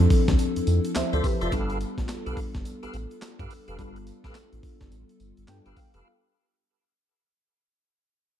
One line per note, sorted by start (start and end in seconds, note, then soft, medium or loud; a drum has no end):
0.00 1.48 F3 medium
0.00 1.48 C4 medium
0.00 1.48 D4 medium
0.00 0.93 E4 medium
0.00 0.93 A4 medium
0.10 kick medium
0.10 open hi-hat medium
0.10 shaker soft
0.28 0.36 D2 medium
0.28 kick loud
0.28 snare medium
0.28 closed hi-hat soft
0.28 shaker soft
0.39 closed hi-hat medium
0.39 tambourine medium
0.39 shaker medium
0.56 0.61 F2 soft
0.56 closed hi-hat medium
0.56 shaker medium
0.67 0.80 F2 loud
0.67 closed hi-hat medium
0.67 tambourine medium
0.67 shaker medium
0.84 closed hi-hat medium
0.84 shaker medium
0.95 1.03 D2 soft
0.95 1.13 C5 medium
0.95 1.13 E5 medium
0.95 snare loud
0.95 clap medium
0.95 closed hi-hat medium
0.95 tambourine medium
0.95 shaker medium
1.13 1.21 D2 loud
1.13 1.27 F4 medium
1.13 1.24 A4 medium
1.13 1.27 C5 medium
1.13 1.24 C5 medium
1.13 1.27 D5 medium
1.13 1.27 E5 medium
1.13 closed hi-hat medium
1.13 shaker soft
1.24 1.41 G4 medium
1.24 1.41 B4 medium
1.24 kick loud
1.24 open hi-hat medium
1.24 tambourine medium
1.24 shaker medium
1.41 1.49 F1 medium
1.41 1.55 F4 medium
1.41 1.52 F4 medium
1.41 1.53 A4 medium
1.41 1.55 C5 medium
1.41 1.55 D5 medium
1.41 1.55 E5 medium
1.41 closed hi-hat medium
1.41 shaker medium
1.52 1.85 G1 loud
1.52 3.74 G3 medium
1.52 3.75 B3 medium
1.52 3.75 D4 medium
1.52 3.75 F4 medium
1.52 1.79 G4 loud
1.52 1.79 A4 medium
1.52 3.76 A4 medium
1.52 1.79 B4 medium
1.52 1.79 F5 loud
1.52 kick loud
1.52 closed hi-hat medium
1.52 tambourine medium
1.52 shaker medium
1.69 closed hi-hat medium
1.69 shaker medium
1.81 closed hi-hat medium
1.81 tambourine medium
1.81 shaker medium
1.98 2.06 A1 medium
1.98 kick medium
1.98 snare medium
1.98 closed hi-hat medium
1.98 shaker soft
2.09 snare loud
2.09 clap medium
2.09 closed hi-hat medium
2.09 tambourine loud
2.09 shaker medium
2.26 2.34 B1 loud
2.26 2.40 G4 medium
2.26 2.40 A4 medium
2.26 2.40 B4 medium
2.26 2.40 F5 medium
2.26 closed hi-hat soft
2.26 shaker soft
2.37 kick loud
2.37 open hi-hat medium
2.37 shaker medium
2.55 2.62 G1 loud
2.55 kick loud
2.55 snare medium
2.55 closed hi-hat soft
2.55 shaker soft
2.65 closed hi-hat medium
2.65 tambourine medium
2.65 shaker medium
2.83 2.87 A1 medium
2.83 2.97 G4 medium
2.83 2.97 A4 medium
2.83 2.97 B4 medium
2.83 2.97 F5 medium
2.83 closed hi-hat medium
2.83 shaker medium
2.94 3.06 A1 loud
2.94 closed hi-hat medium
2.94 tambourine medium
2.94 shaker soft
3.11 closed hi-hat medium
3.11 shaker medium
3.22 snare loud
3.22 clap loud
3.22 closed hi-hat medium
3.22 tambourine medium
3.22 shaker medium
3.39 3.47 G2 loud
3.39 3.53 G4 medium
3.39 3.53 A4 medium
3.39 3.54 B4 medium
3.39 3.54 F5 medium
3.39 kick loud
3.39 closed hi-hat medium
3.39 shaker soft
3.50 open hi-hat medium
3.50 tambourine medium
3.50 shaker medium
3.68 3.80 F1 medium
3.68 3.77 G4 medium
3.68 3.77 A4 medium
3.68 3.78 B4 medium
3.68 3.78 F5 medium
3.68 closed hi-hat medium
3.68 shaker medium
3.78 4.11 G1 loud
3.78 5.45 G3 medium
3.78 5.45 B3 medium
3.78 5.45 D4 medium
3.78 5.46 F4 medium
3.78 3.98 G4 medium
3.78 3.98 A4 medium
3.78 5.46 A4 medium
3.78 3.98 B4 medium
3.78 3.98 F5 loud
3.78 kick loud
3.78 closed hi-hat medium
3.78 tambourine medium
3.78 shaker medium
3.96 closed hi-hat medium
3.96 shaker medium
4.07 closed hi-hat medium
4.07 tambourine medium
4.07 shaker medium
4.24 4.32 A1 medium
4.24 4.38 G4 medium
4.24 4.38 A4 medium
4.24 4.38 B4 medium
4.24 4.39 F5 loud
4.24 kick medium
4.24 snare medium
4.24 closed hi-hat medium
4.24 shaker medium
4.35 snare loud
4.35 clap loud
4.35 closed hi-hat medium
4.35 tambourine loud
4.35 shaker medium
4.53 4.60 A1 loud
4.53 closed hi-hat soft
4.53 shaker soft
4.63 kick loud
4.63 open hi-hat medium
4.63 shaker medium
4.81 4.89 G1 loud
4.81 kick medium
4.81 snare medium
4.81 closed hi-hat soft
4.81 shaker soft
4.92 5.04 A1 loud
4.92 closed hi-hat medium
4.92 tambourine medium
4.92 shaker medium
5.09 closed hi-hat medium
5.09 shaker soft
5.20 5.33 G1 medium
5.20 closed hi-hat medium
5.20 tambourine medium
5.20 shaker soft
5.37 5.45 G1 medium
5.37 closed hi-hat medium
5.37 shaker medium
5.48 5.61 G2 loud
5.48 6.05 G3 medium
5.48 6.05 B3 medium
5.48 6.05 D4 medium
5.48 6.05 F4 medium
5.48 6.06 A4 medium
5.48 5.75 G5 medium
5.48 snare loud
5.48 clap loud
5.48 closed hi-hat medium
5.48 tambourine loud
5.48 shaker medium
5.66 5.74 G1 medium
5.66 5.80 G4 medium
5.66 5.80 A4 medium
5.66 5.80 B4 medium
5.66 5.80 F5 medium
5.66 closed hi-hat medium
5.66 shaker soft
5.76 6.03 F5 medium
5.76 kick loud
5.76 open hi-hat medium
5.76 tambourine medium
5.76 shaker medium
5.94 6.02 F1 medium
5.94 6.08 G4 medium
5.94 6.08 A4 medium
5.94 6.08 B4 medium
5.94 6.08 F5 medium
5.94 closed hi-hat medium
5.94 shaker medium